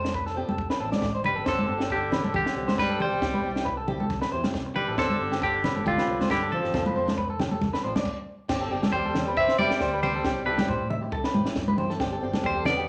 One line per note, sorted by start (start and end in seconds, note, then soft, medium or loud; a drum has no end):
0.00 0.43 F1 medium
0.00 0.11 A4 medium
0.00 0.16 A4 medium
0.00 0.14 C5 medium
0.05 0.17 D4 medium
0.05 muted steel-string acoustic guitar stroke soft
0.05 snare medium
0.14 0.26 B4 medium
0.14 kick medium
0.26 0.36 A4 medium
0.26 snare soft
0.35 0.50 F3 medium
0.35 0.51 C4 medium
0.35 0.51 D4 medium
0.35 0.48 G4 medium
0.35 0.51 A4 medium
0.48 0.68 F1 medium
0.48 0.70 A4 medium
0.48 high conga medium
0.58 kick medium
0.70 0.80 B4 medium
0.70 snare medium
0.79 0.91 A1 medium
0.79 0.92 F3 medium
0.79 0.92 C4 medium
0.79 0.92 D4 medium
0.79 0.92 A4 medium
0.79 0.90 A4 medium
0.91 1.06 C4 soft
0.91 1.05 D4 soft
0.91 1.04 A4 medium
0.91 1.13 D5 medium
0.91 snare medium
0.91 high conga medium
1.02 1.22 A1 medium
1.02 kick medium
1.02 snare medium
1.14 1.24 C5 medium
1.24 1.44 G1 medium
1.24 1.46 G3 medium
1.24 1.35 B4 medium
1.24 1.48 B4 medium
1.24 low conga medium
1.35 1.44 C4 soft
1.35 1.44 D4 soft
1.35 1.46 A4 soft
1.35 1.46 A4 medium
1.44 1.66 G1 loud
1.44 1.59 G3 medium
1.44 1.60 C4 medium
1.44 1.60 D4 medium
1.44 1.60 G4 medium
1.44 1.67 C5 medium
1.44 kick medium
1.44 snare medium
1.48 1.89 D3 medium
1.48 1.93 A4 medium
1.59 high conga medium
1.66 2.19 G1 medium
1.66 1.79 G3 medium
1.66 1.79 C4 medium
1.66 1.78 D4 medium
1.66 1.76 G4 medium
1.66 1.80 A4 medium
1.77 1.93 C4 soft
1.77 1.92 D4 medium
1.77 1.91 G4 soft
1.77 1.90 G4 medium
1.77 snare medium
1.90 2.32 D3 medium
1.90 2.32 G4 medium
1.90 2.11 A4 medium
1.90 kick medium
2.10 2.25 G3 medium
2.10 2.26 C4 medium
2.10 2.26 D4 medium
2.10 2.27 G4 medium
2.10 2.24 B4 medium
2.10 snare medium
2.10 low conga medium
2.24 2.44 G1 medium
2.24 2.34 A4 medium
2.24 high conga medium
2.34 2.76 D3 medium
2.34 2.46 G4 medium
2.34 2.76 G4 medium
2.34 kick medium
2.34 low conga medium
2.46 muted clean electric guitar stroke medium
2.46 snare medium
2.55 2.67 C2 medium
2.55 2.68 C4 medium
2.55 2.66 D4 medium
2.55 2.65 G4 medium
2.55 muted steel-string acoustic guitar stroke medium
2.66 2.81 C4 soft
2.66 2.80 D4 soft
2.66 2.80 G4 soft
2.66 2.77 C5 medium
2.66 snare medium
2.66 high conga medium
2.78 2.98 G2 medium
2.78 3.00 G3 medium
2.78 2.90 B4 medium
2.78 3.01 B4 loud
2.78 kick medium
2.78 snare medium
2.90 3.00 A4 medium
3.00 3.64 G3 medium
3.00 3.20 G4 medium
3.00 3.63 C5 medium
3.00 low conga medium
3.10 3.21 B1 medium
3.10 3.21 C4 soft
3.10 3.22 D4 soft
3.10 3.21 G4 medium
3.21 3.42 C2 loud
3.21 3.36 G3 medium
3.21 3.36 C4 medium
3.21 3.36 E4 medium
3.21 3.33 G4 loud
3.21 3.37 G4 medium
3.21 kick medium
3.21 snare medium
3.34 3.43 B4 medium
3.34 high conga medium
3.43 3.94 C2 medium
3.43 3.55 G3 medium
3.43 3.56 C4 medium
3.43 3.56 E4 medium
3.43 3.55 G4 medium
3.43 muted clean electric guitar stroke medium
3.56 3.70 C4 soft
3.56 3.69 E4 soft
3.56 3.68 G4 medium
3.56 snare medium
3.65 3.77 B4 medium
3.65 kick medium
3.77 3.87 A4 medium
3.88 4.02 G3 medium
3.88 4.02 C4 medium
3.88 4.03 E4 medium
3.88 3.99 G4 medium
3.88 4.03 G4 medium
3.88 low conga medium
4.00 4.20 C2 medium
4.00 4.21 A4 medium
4.00 high conga medium
4.10 kick medium
4.10 snare soft
4.10 low conga medium
4.21 4.31 B4 medium
4.21 snare medium
4.31 4.43 E2 medium
4.31 4.43 G3 medium
4.31 4.44 C4 medium
4.31 4.44 E4 medium
4.31 4.42 G4 medium
4.31 4.43 C5 medium
4.43 4.58 C4 soft
4.43 4.57 E4 soft
4.43 4.56 G4 soft
4.43 snare medium
4.43 high conga medium
4.54 4.73 C3 medium
4.54 kick medium
4.54 snare medium
4.66 muted clean electric guitar stroke medium
4.76 4.96 G3 medium
4.76 4.87 B4 medium
4.76 4.98 B4 medium
4.76 low conga medium
4.87 4.97 A1 medium
4.87 4.96 C4 soft
4.87 4.97 E4 soft
4.87 4.97 G4 soft
4.87 4.98 A4 medium
4.96 5.18 G1 medium
4.96 5.39 D3 medium
4.96 5.11 G3 medium
4.96 5.12 C4 medium
4.96 5.12 D4 medium
4.96 5.12 G4 medium
4.96 5.39 A4 medium
4.96 5.19 C5 medium
4.96 kick medium
4.96 snare medium
5.10 high conga medium
5.19 5.70 G1 medium
5.19 5.31 G3 medium
5.19 5.32 C4 medium
5.19 5.33 D4 medium
5.19 5.30 G4 medium
5.31 5.45 C4 soft
5.31 5.44 G4 medium
5.31 5.41 G4 medium
5.31 snare medium
5.42 5.84 D3 medium
5.42 5.84 G4 medium
5.42 5.63 A4 medium
5.42 kick medium
5.64 5.78 G3 medium
5.64 5.78 C4 medium
5.64 5.79 D4 medium
5.64 5.79 G4 medium
5.64 5.76 B4 medium
5.64 snare medium
5.64 low conga medium
5.76 5.95 G1 medium
5.76 5.85 A4 medium
5.76 high conga medium
5.86 6.27 D3 medium
5.86 6.31 F4 medium
5.86 5.97 G4 medium
5.86 kick medium
5.86 low conga medium
5.98 6.19 B4 medium
5.98 snare medium
6.07 6.18 C2 loud
6.07 6.20 G3 medium
6.07 6.21 C4 medium
6.07 6.21 D4 medium
6.07 6.19 G4 medium
6.20 6.34 C4 soft
6.20 6.33 D4 soft
6.20 6.32 G4 soft
6.20 6.30 C5 medium
6.20 snare medium
6.20 high conga medium
6.30 6.50 G2 medium
6.30 6.51 D3 medium
6.30 6.51 G4 medium
6.30 6.42 B4 medium
6.30 kick medium
6.30 snare medium
6.43 6.52 A4 medium
6.52 7.15 F3 medium
6.52 7.14 A4 medium
6.52 muted clean electric guitar stroke medium
6.52 low conga medium
6.63 6.73 G1 medium
6.63 6.73 C4 soft
6.63 6.73 D4 soft
6.63 6.73 G4 medium
6.63 snare soft
6.72 6.93 F1 loud
6.72 6.87 F3 medium
6.72 6.88 C4 medium
6.72 6.88 D4 medium
6.72 6.88 A4 medium
6.72 6.86 A4 medium
6.72 kick medium
6.72 snare medium
6.72 low conga medium
6.86 6.95 B4 medium
6.86 high conga medium
6.94 7.46 F1 medium
6.94 7.07 F3 medium
6.94 7.08 C4 medium
6.94 7.07 D4 medium
6.94 7.05 A4 medium
6.94 7.17 C5 medium
7.07 7.21 C4 soft
7.07 7.21 D4 medium
7.07 7.19 A4 medium
7.07 snare medium
7.07 high conga medium
7.18 7.29 B4 medium
7.18 kick medium
7.30 7.39 A4 medium
7.39 7.53 F3 medium
7.39 7.54 C4 medium
7.39 7.51 G4 medium
7.39 7.55 A4 medium
7.39 snare medium
7.39 low conga medium
7.51 7.71 F1 medium
7.51 7.72 A4 medium
7.51 high conga medium
7.61 kick medium
7.61 snare soft
7.61 high conga medium
7.61 low conga medium
7.73 7.83 B4 medium
7.73 snare medium
7.83 7.95 A1 loud
7.83 7.96 F3 medium
7.83 7.96 C4 medium
7.83 7.96 D4 medium
7.83 7.94 A4 medium
7.83 7.95 C5 medium
7.95 8.07 C4 soft
7.95 8.06 D4 medium
7.95 8.05 A4 soft
7.95 8.17 D5 medium
7.95 snare medium
7.95 high conga medium
8.05 kick medium
8.05 crash medium
8.48 8.69 G1 loud
8.48 8.63 G3 medium
8.48 8.63 C4 medium
8.48 8.64 D4 medium
8.48 8.61 G4 medium
8.48 8.64 G4 medium
8.48 kick medium
8.48 snare medium
8.48 crash medium
8.61 8.71 A4 medium
8.69 8.82 G1 loud
8.69 8.82 G3 medium
8.69 8.83 C4 medium
8.69 8.82 D4 medium
8.69 8.83 G4 medium
8.69 8.81 G4 medium
8.82 8.97 C4 soft
8.82 8.96 D4 medium
8.82 8.95 G4 medium
8.82 8.93 A4 medium
8.82 snare medium
8.82 high conga medium
8.92 9.04 E2 medium
8.92 9.35 G3 medium
8.92 9.05 G4 medium
8.92 9.37 C5 medium
8.92 kick medium
9.05 9.34 E2 medium
9.05 9.26 A4 medium
9.15 snare medium
9.15 low conga medium
9.26 9.41 C4 soft
9.26 9.40 D4 medium
9.26 9.39 G4 medium
9.26 9.48 B4 medium
9.37 9.48 G1 loud
9.37 9.58 C4 medium
9.37 9.58 E5 loud
9.37 kick medium
9.48 9.59 C5 medium
9.48 snare medium
9.58 9.70 E1 medium
9.58 9.70 G3 medium
9.58 10.00 G3 medium
9.58 9.71 C4 medium
9.58 9.70 D4 medium
9.58 9.68 G4 medium
9.58 9.71 B4 medium
9.58 10.00 D5 loud
9.58 high conga medium
9.69 9.84 C4 soft
9.69 9.83 D4 soft
9.69 9.83 G4 medium
9.69 snare medium
9.80 10.20 D2 medium
9.80 9.93 C5 medium
9.80 kick medium
9.80 snare medium
9.93 10.14 B4 medium
10.01 10.16 G3 medium
10.01 10.44 G3 medium
10.01 10.17 C4 medium
10.01 10.17 D4 medium
10.01 10.18 G4 medium
10.01 10.46 C5 medium
10.01 low conga medium
10.15 10.25 A4 medium
10.24 10.44 C2 medium
10.24 10.38 C4 medium
10.24 10.39 E4 medium
10.24 10.46 G4 loud
10.24 10.39 G4 medium
10.24 kick medium
10.24 snare medium
10.45 10.58 C2 loud
10.45 10.88 G3 medium
10.45 10.58 C4 medium
10.45 10.59 E4 medium
10.45 10.56 G4 medium
10.45 10.58 A4 medium
10.45 10.87 B4 medium
10.57 10.72 E4 soft
10.57 10.70 G4 medium
10.57 10.68 G4 medium
10.57 snare medium
10.57 high conga medium
10.68 10.79 A2 loud
10.68 10.90 C5 medium
10.68 kick medium
10.80 11.09 A2 medium
10.90 11.02 E5 medium
10.90 low conga medium
11.01 11.16 E4 medium
11.01 11.14 G4 medium
11.01 muted clean electric guitar stroke medium
11.12 11.23 C2 loud
11.12 11.24 A4 loud
11.12 kick medium
11.24 11.45 B4 medium
11.24 snare medium
11.33 11.45 A1 medium
11.33 11.46 C4 medium
11.33 11.47 E4 medium
11.33 11.44 G4 medium
11.33 high conga medium
11.45 11.60 E4 soft
11.45 11.58 G4 medium
11.45 snare medium
11.55 11.95 G2 medium
11.55 kick medium
11.55 snare medium
11.68 11.78 B4 medium
11.68 high conga medium
11.76 11.91 C4 medium
11.76 11.92 E4 medium
11.76 11.93 G4 medium
11.76 11.90 C5 medium
11.76 low conga medium
11.90 11.99 A4 medium
11.90 snare soft
11.99 12.20 G1 medium
11.99 12.14 G3 medium
11.99 12.14 C4 medium
11.99 12.14 D4 medium
11.99 12.12 G4 loud
11.99 12.15 G4 loud
11.99 kick medium
11.99 snare medium
12.12 12.22 A4 medium
12.21 12.33 G1 loud
12.21 12.34 G3 medium
12.21 12.34 C4 medium
12.21 12.33 D4 medium
12.21 12.32 G4 medium
12.33 12.48 C4 soft
12.33 12.47 D4 medium
12.33 12.46 G4 medium
12.33 12.43 A4 medium
12.33 snare medium
12.33 high conga medium
12.44 12.55 E2 loud
12.44 12.65 G3 medium
12.44 12.56 G4 medium
12.44 12.65 C5 medium
12.44 kick medium
12.56 12.84 E2 medium
12.56 12.77 A4 medium
12.65 12.88 B3 medium
12.65 12.88 D5 loud
12.65 snare medium
12.65 low conga medium
12.77 12.88 D4 medium
12.77 12.88 G4 medium